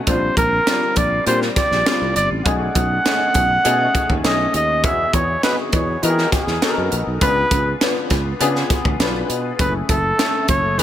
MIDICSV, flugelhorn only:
0, 0, Header, 1, 2, 480
1, 0, Start_track
1, 0, Tempo, 595238
1, 60, Time_signature, 4, 2, 24, 8
1, 8733, End_track
2, 0, Start_track
2, 0, Title_t, "Flugelhorn"
2, 0, Program_c, 0, 56
2, 64, Note_on_c, 0, 72, 82
2, 285, Note_off_c, 0, 72, 0
2, 304, Note_on_c, 0, 70, 91
2, 785, Note_on_c, 0, 74, 80
2, 797, Note_off_c, 0, 70, 0
2, 1019, Note_off_c, 0, 74, 0
2, 1024, Note_on_c, 0, 72, 87
2, 1131, Note_off_c, 0, 72, 0
2, 1263, Note_on_c, 0, 74, 90
2, 1709, Note_off_c, 0, 74, 0
2, 1744, Note_on_c, 0, 74, 97
2, 1851, Note_off_c, 0, 74, 0
2, 1978, Note_on_c, 0, 78, 100
2, 3386, Note_off_c, 0, 78, 0
2, 3429, Note_on_c, 0, 75, 79
2, 3648, Note_off_c, 0, 75, 0
2, 3673, Note_on_c, 0, 75, 87
2, 3907, Note_on_c, 0, 76, 90
2, 3920, Note_off_c, 0, 75, 0
2, 4143, Note_on_c, 0, 73, 82
2, 4155, Note_off_c, 0, 76, 0
2, 4381, Note_off_c, 0, 73, 0
2, 4384, Note_on_c, 0, 71, 75
2, 4491, Note_off_c, 0, 71, 0
2, 4624, Note_on_c, 0, 73, 73
2, 4866, Note_on_c, 0, 70, 84
2, 4878, Note_off_c, 0, 73, 0
2, 5100, Note_off_c, 0, 70, 0
2, 5105, Note_on_c, 0, 68, 65
2, 5571, Note_off_c, 0, 68, 0
2, 5820, Note_on_c, 0, 71, 102
2, 6266, Note_off_c, 0, 71, 0
2, 7741, Note_on_c, 0, 71, 80
2, 7848, Note_off_c, 0, 71, 0
2, 7980, Note_on_c, 0, 69, 85
2, 8425, Note_off_c, 0, 69, 0
2, 8461, Note_on_c, 0, 73, 83
2, 8698, Note_on_c, 0, 71, 91
2, 8711, Note_off_c, 0, 73, 0
2, 8733, Note_off_c, 0, 71, 0
2, 8733, End_track
0, 0, End_of_file